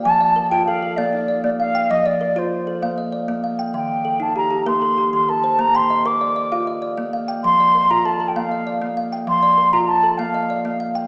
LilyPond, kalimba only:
<<
  \new Staff \with { instrumentName = "Kalimba" } { \time 12/8 \key bes \major \tempo 4. = 130 <d'' g''>8 d''8 bes'4 a'8 a'8 f''8 ees'8 d''4 f''8 g''8~ | g''8 d''8 bes'4. a'8 f''8 ees''8 d''4 f''8 g''8~ | g''8 r8 a'4 g'8 g'8 bes'8 a'8 g'4 bes'8 c''8~ | c''8 g''8 ees''4 d''8 d''8 f''8 ees''8 d''4 f''8 g''8~ |
g''8 d''8 bes'4 a'8 a'8 f''8 ees''8 d''4 f''8 g''8~ | g''8 d''8 bes'4. a'8 f''8 ees''8 d''4 f''8 g''8 | }
  \new Staff \with { instrumentName = "Kalimba" } { \time 12/8 \key bes \major f4 r8 f'4 r8 bes4 r8 bes4 r8 | f4 r8 f'4 r8 bes4 r8 bes4 r8 | ees4 r8 ees'4 r8 bes4 r8 ees4 r8 | bes4 r8 bes'4 r8 f'4 r8 bes4 r8 |
f4 r8 f'4 r8 bes4 r8 bes4 r8 | f4 r8 f'4 r8 bes4 r8 bes4 r8 | }
>>